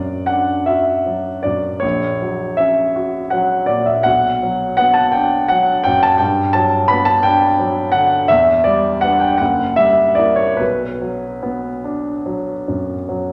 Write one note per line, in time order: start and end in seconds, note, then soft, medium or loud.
0.00 1.45 F#2 soft
0.00 0.14 F#3 soft
0.00 0.29 D5 medium
0.26 0.91 D4 soft
0.26 0.67 F#5 medium
0.66 1.29 F#4 soft
0.66 1.43 E5 medium
1.06 1.67 F#3 soft
1.43 1.83 F#2 soft
1.43 1.82 D5 medium
1.80 4.01 A#1 soft
1.80 2.57 C#5 medium
2.22 2.81 F#3 soft
2.57 3.19 C#4 soft
2.57 3.32 E5 medium
2.96 3.55 F#4 soft
3.30 3.91 F#3 soft
3.30 3.68 F#5 medium
3.66 4.05 A#2 soft
3.66 3.86 D5 medium
3.86 4.05 E5 soft
4.03 6.16 B1 soft
4.03 4.75 F#5 medium
4.43 5.00 F#3 soft
4.77 5.36 B3 soft
4.77 4.95 F#5 medium
4.94 5.13 A5 medium
5.12 5.71 D4 soft
5.12 5.49 G5 medium
5.48 6.07 F#3 soft
5.48 5.84 F#5 medium
5.84 6.20 F#2 soft
5.84 6.02 G5 medium
6.03 6.20 A5 medium
6.18 8.26 G2 soft
6.18 6.53 G5 medium
6.53 7.10 F#3 soft
6.53 6.88 A5 medium
6.88 7.46 B3 soft
6.88 7.06 B5 medium
7.05 7.23 A5 medium
7.23 7.81 D4 soft
7.23 7.94 G5 medium
7.60 8.16 F#3 soft
7.92 8.30 D3 soft
7.92 8.29 F#5 medium
8.28 9.36 E2 medium
8.28 8.65 E5 medium
8.64 9.25 G3 soft
8.64 9.01 D5 medium
9.01 9.37 B3 soft
9.01 9.37 D4 soft
9.01 9.20 F#5 medium
9.20 9.39 G5 medium
9.38 10.57 F#1 soft
9.38 9.77 F#5 medium
9.76 10.43 G3 soft
9.76 10.17 E5 medium
10.15 10.56 A#3 soft
10.15 10.57 E4 soft
10.15 10.37 D5 medium
10.36 10.59 C#5 medium
10.57 13.06 B1 soft
10.57 13.32 B4 medium
11.01 11.68 F#3 soft
11.43 12.09 B3 soft
11.84 12.51 D4 soft
12.26 12.93 F#3 soft
12.68 13.32 F#2 soft
13.09 13.32 F#3 soft